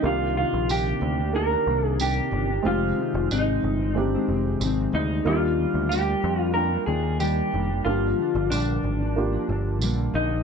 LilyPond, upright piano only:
\new Staff \with { instrumentName = "Upright piano" } { \time 4/4 \key c \minor \tempo 4 = 92 <bes d' ees' g'>4. r8 <bes d' ees' g'>4. r8 | <aes c' ees' g'>4. r8 <aes c' ees' g'>4. r8 | <bes d' f' g'>4. r8 <bes d' f' g''>4. r8 | <bes d' f' g'>4. r8 <bes d' f' g'>4. r8 | }